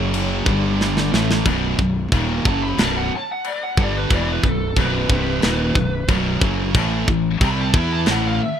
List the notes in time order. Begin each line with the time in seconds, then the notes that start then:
Already playing: F#1 F#2 C#3 F#3 C#4 C#5
0.14 crash
0.46 G1 G2 D3 G3 D4 D5, kick
0.81 snare
0.97 snare
1.13 A1 A2 E3 F#3 A3 D#4 B4, snare
1.31 snare
1.45 B0 B1 F#2 B2, kick, china
1.78 B0 B1 F#2, kick
2.12 D#1 D#2 A#2 D#3, kick, china
2.45 F#1 F#2 C#3 F#3 A5, kick
2.62 B5
2.78 B0 B1 F#2 B2 A5, snare, china
2.97 F#5
3.16 A5
3.32 F#5
3.44 D5, china
3.63 F#5
3.77 G1 G2 D3 G3, kick
3.83 D5
3.97 B4
4.10 E1 E2 B2 E3, kick, china
4.15 D5
4.32 B4
4.43 B0 B1 F#2, kick
4.48 A4
4.76 B0 B1 F#2 B2 B4, kick, china
5.09 C1 C2 G2 C3, kick
5.42 D#1 D#2 A#2 D#3, snare, china
5.75 B0 B1 F#2, kick
6.08 B0 B1 F#2 B2, kick, china
6.41 F#1 F#2 C#3 F#3, kick
6.74 A1 A2 E3 A3, kick, china
7.08 A1 A2 E3, kick
7.40 C2 C3 G3 C4, kick, china
7.44 B5
7.61 A5
7.74 E2 E3 B3 E4 B5, kick
7.92 A5
8.06 A1 A2 E3 A3, snare, china
8.11 F#5
8.27 F5
8.42 E5